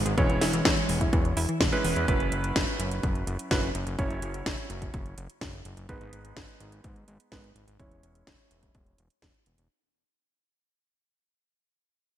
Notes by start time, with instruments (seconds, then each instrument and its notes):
0.06 analog synth bass G#1, synth arpeggio sound G#4, closed hi-hat
0.17 analog synth bass E1, synth arpeggio sound E3, electric grand piano G#3 C#4 E4 C#5, kick, closed hi-hat
0.29 analog synth bass E1, synth arpeggio sound E3, closed hi-hat
0.41 analog synth bass E1, synth arpeggio sound E4, snare, open hi-hat
0.53 synth arpeggio sound E3, closed hi-hat
0.65 analog synth bass E1, synth arpeggio sound E3, kick, snare, closed hi-hat
0.77 synth arpeggio sound G#3, closed hi-hat
0.89 analog synth bass E1, synth arpeggio sound E3, open hi-hat
1.01 synth arpeggio sound E4, kick, closed hi-hat
1.13 analog synth bass E1, synth arpeggio sound E3, kick, closed hi-hat
1.25 synth arpeggio sound E3, closed hi-hat
1.37 analog synth bass E1, synth arpeggio sound E4, open hi-hat
1.49 synth arpeggio sound E3, closed hi-hat
1.61 analog synth bass E1, synth arpeggio sound E3, kick, snare, closed hi-hat
1.72 electric grand piano G#3 C#4 E4 B4, synth arpeggio sound G#3, closed hi-hat
1.84 analog synth bass E1, synth arpeggio sound E3, open hi-hat
1.96 analog synth bass E2, synth arpeggio sound E4, closed hi-hat
2.08 analog synth bass F#1, electric grand piano F#3 C#4 E4 B4, kick, closed hi-hat
2.20 analog synth bass F#1, closed hi-hat
2.32 analog synth bass F#1, closed hi-hat
2.44 closed hi-hat
2.56 analog synth bass F#1, kick, snare, closed hi-hat
2.68 closed hi-hat
2.80 analog synth bass F#1, closed hi-hat
2.91 closed hi-hat
3.03 analog synth bass F#1, kick, closed hi-hat
3.15 closed hi-hat
3.27 analog synth bass F#1, closed hi-hat
3.39 closed hi-hat
3.51 analog synth bass F#1, electric grand piano F#3 C#4 E4 B4, kick, snare, closed hi-hat
3.63 closed hi-hat
3.75 analog synth bass F#1, closed hi-hat
3.87 analog synth bass F#1, closed hi-hat
3.99 analog synth bass F#1, electric grand piano F#3 C#4 E4 C#5, kick, closed hi-hat
4.10 analog synth bass F#1, closed hi-hat
4.22 analog synth bass F#1, closed hi-hat
4.34 closed hi-hat
4.46 analog synth bass F#1, kick, snare, closed hi-hat
4.58 closed hi-hat
4.70 analog synth bass F#1, closed hi-hat
4.82 kick, closed hi-hat
4.94 analog synth bass F#1, kick, closed hi-hat
5.06 closed hi-hat
5.18 analog synth bass F#1, closed hi-hat
5.30 closed hi-hat
5.41 analog synth bass F#1, kick, snare, closed hi-hat
5.53 closed hi-hat
5.65 analog synth bass F#1, closed hi-hat
5.77 analog synth bass F#1, closed hi-hat
5.89 analog synth bass G#1, electric grand piano G#3 B3 D#4 B4, kick, closed hi-hat
6.01 analog synth bass G#1, closed hi-hat
6.13 analog synth bass G#1, closed hi-hat
6.25 closed hi-hat
6.37 analog synth bass G#1, kick, snare, closed hi-hat
6.49 closed hi-hat
6.60 analog synth bass G#1, closed hi-hat
6.72 closed hi-hat
6.84 analog synth bass G#1, kick, closed hi-hat
6.96 closed hi-hat
7.08 analog synth bass G#1, closed hi-hat
7.20 closed hi-hat
7.32 analog synth bass G#1, electric grand piano G#3 B3 D#4 B4, kick, snare, closed hi-hat
7.44 closed hi-hat
7.56 analog synth bass G#1, closed hi-hat
7.68 analog synth bass G#1, closed hi-hat
7.79 analog synth bass E1, electric grand piano G#3 C#4 E4 C#5, kick, closed hi-hat
7.91 analog synth bass E1, closed hi-hat
8.03 analog synth bass E1, closed hi-hat
8.15 closed hi-hat
8.27 analog synth bass E1, kick, snare, closed hi-hat
8.39 closed hi-hat
8.51 analog synth bass E1, closed hi-hat
8.63 kick, closed hi-hat
8.75 analog synth bass E1, kick, closed hi-hat
8.86 closed hi-hat
8.98 analog synth bass E1, closed hi-hat
9.10 closed hi-hat
9.22 analog synth bass E1, kick, snare, closed hi-hat
9.34 closed hi-hat
9.46 analog synth bass E1, closed hi-hat
9.58 analog synth bass E1, closed hi-hat